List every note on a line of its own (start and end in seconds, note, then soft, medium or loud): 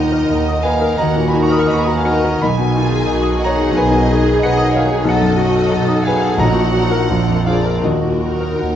0.00 0.18 D#2 medium
0.00 0.93 D#2 medium
0.00 1.16 A#2 soft
0.00 0.60 D#3 soft
0.00 0.21 D#4 soft
0.00 0.60 D#4 soft
0.00 0.11 A#4 soft
0.00 0.60 A#4 soft
0.00 0.60 D#5 medium
0.00 0.58 F#5 medium
0.12 0.39 A#4 soft
0.28 0.89 D#2 medium
0.28 0.57 D#5 soft
0.48 0.74 D#6 soft
0.61 1.30 D#3 soft
0.61 1.30 D#4 soft
0.61 1.30 A#4 soft
0.61 0.96 B4 soft
0.61 0.91 D#5 soft
0.61 0.97 F5 soft
0.61 0.95 G#5 medium
0.81 1.08 A#4 soft
0.96 1.59 D#2 soft
0.96 2.37 F#4 medium
0.96 1.27 D#5 soft
0.96 1.29 F#5 medium
0.96 1.26 A#5 medium
1.01 2.40 D#2 soft
1.16 1.43 A#2 soft
1.28 2.03 D#3 soft
1.28 2.03 D#4 soft
1.28 1.41 G#5 soft
1.28 1.40 B5 soft
1.33 1.61 D#4 soft
1.33 2.04 A#4 soft
1.43 1.51 A#5 soft
1.43 1.51 C#6 soft
1.50 1.79 A#4 soft
1.50 1.59 B5 soft
1.50 1.58 D#6 medium
1.59 1.66 C#6 soft
1.59 1.65 F6 medium
1.66 2.33 D#2 soft
1.66 1.97 D#5 soft
1.66 1.73 B5 soft
1.66 1.71 D#6 soft
1.73 1.80 A#5 soft
1.73 1.79 C#6 medium
1.78 1.86 B5 medium
1.82 1.88 G#5 soft
1.82 2.15 D#6 soft
1.86 1.97 F#5 soft
1.86 1.95 A#5 soft
1.96 2.06 F5 soft
1.96 2.05 G#5 soft
2.05 2.41 D#3 soft
2.05 2.41 D#4 soft
2.05 2.41 A#4 soft
2.05 2.23 A#4 soft
2.05 2.34 D#5 soft
2.05 2.43 D#5 medium
2.05 2.39 F#5 medium
2.25 2.42 A#4 soft
2.42 3.70 B1 medium
2.42 3.02 B1 medium
2.42 2.75 D#4 soft
2.42 3.05 D#5 soft
2.42 3.44 G#5 medium
2.42 3.38 B5 medium
2.59 2.86 B2 soft
2.76 3.41 D#3 soft
2.76 3.41 D#4 soft
2.76 3.03 D#4 soft
2.76 3.09 F4 medium
2.76 3.41 G#4 soft
2.91 3.18 G#4 soft
3.06 3.68 B1 medium
3.06 3.75 F#4 medium
3.06 3.34 D#5 soft
3.22 3.50 D#6 soft
3.39 4.07 D#3 soft
3.39 4.07 D#4 soft
3.39 3.67 D#5 soft
3.44 4.08 G#4 soft
3.44 3.75 C#5 medium
3.44 3.76 F#5 medium
3.44 3.74 A#5 medium
3.56 3.84 G#4 medium
3.71 5.01 B1 soft
3.71 4.41 D#5 medium
3.76 4.34 B1 medium
3.76 5.07 G#4 medium
3.76 4.38 B4 medium
3.76 4.38 G#5 medium
3.91 4.18 B2 soft
4.06 4.73 D#3 soft
4.06 4.33 D#4 medium
4.06 4.72 D#4 soft
4.06 4.73 G#4 soft
4.22 4.50 G#4 medium
4.39 4.99 B1 medium
4.39 4.66 D#5 medium
4.39 4.74 D#5 medium
4.43 4.74 B4 medium
4.43 4.73 F#5 medium
4.57 4.84 D#6 medium
4.72 5.06 D#3 soft
4.72 5.06 D#4 soft
4.72 5.06 G#4 soft
4.72 5.07 C#5 medium
4.72 4.99 D#5 medium
4.72 5.05 F5 medium
4.77 4.86 G#4 soft
4.87 5.05 G#4 soft
5.04 6.34 B1 medium
5.04 5.65 B1 medium
5.04 5.38 F#3 soft
5.04 5.39 D#4 soft
5.04 5.38 A4 medium
5.04 5.39 A4 soft
5.04 6.03 D#5 medium
5.09 5.54 A4 medium
5.09 5.70 F#5 medium
5.20 5.48 F#2 soft
5.36 6.04 F#3 soft
5.36 6.04 D#4 soft
5.36 5.64 F#4 medium
5.36 5.73 F#4 medium
5.36 6.05 A4 soft
5.55 5.82 A4 soft
5.72 6.32 B1 medium
5.72 6.05 A4 medium
5.72 5.98 F#5 soft
5.88 6.15 D#6 medium
6.03 6.38 F#3 soft
6.03 6.38 D#4 soft
6.03 6.39 G#4 medium
6.03 6.39 A4 soft
6.03 6.38 F5 medium
6.03 6.31 F#5 soft
6.07 6.38 B4 soft
6.07 6.38 G#5 medium
6.22 6.39 A4 medium
6.38 7.06 A#1 medium
6.38 7.01 A#1 medium
6.38 7.06 A#2 medium
6.38 6.73 F#3 soft
6.38 6.73 D#4 soft
6.38 7.09 F#4 medium
6.38 6.73 A#4 soft
6.38 7.42 D#5 medium
6.38 7.46 F#5 medium
6.38 7.42 A#5 medium
6.55 6.84 A#2 soft
6.73 7.09 F#3 soft
6.73 7.09 D#4 soft
6.73 7.02 F#4 soft
6.73 7.09 A#4 soft
6.91 7.09 A#4 soft
7.09 7.75 A#1 medium
7.09 7.82 A#1 soft
7.09 7.44 F3 soft
7.09 7.44 D4 soft
7.09 7.83 F4 soft
7.09 7.46 A#4 soft
7.28 7.57 F2 soft
7.45 7.82 F3 soft
7.45 7.82 D4 soft
7.45 7.77 F4 soft
7.45 7.82 G#4 soft
7.45 7.83 A#4 soft
7.45 7.83 D5 soft
7.45 7.81 F5 medium
7.66 7.84 A#4 soft
7.83 8.76 D#2 soft
7.83 8.50 D#2 soft
7.83 8.76 D#3 medium
7.83 8.51 F#4 soft
7.83 8.20 F#4 soft
7.83 8.76 A#4 soft
7.83 8.76 D#5 soft
8.03 8.33 A#2 soft
8.20 8.76 F#3 soft
8.20 8.76 D#4 soft
8.20 8.52 F#4 soft
8.20 8.76 A#4 soft
8.40 8.71 A#4 soft
8.58 8.76 D#2 soft
8.58 8.76 D#4 soft
8.58 8.76 F#5 soft